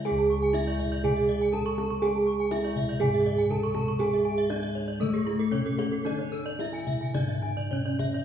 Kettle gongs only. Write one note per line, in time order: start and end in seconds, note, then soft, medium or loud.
0.00 0.51 C#3 soft
0.05 1.49 G#4 medium
0.10 3.00 C#2 medium
0.55 0.63 D4 soft
1.53 1.61 D4 medium
2.03 3.47 G#4 medium
2.52 2.60 D4 soft
3.01 4.46 G#2 medium
3.51 3.59 D4 soft
4.00 5.49 G#4 medium
4.51 4.59 D4 soft
5.02 6.56 D3 medium
5.54 5.62 D4 soft
6.07 6.60 D4 medium
6.61 6.69 D4 medium
7.16 8.25 G#2 medium
7.71 7.79 D4 soft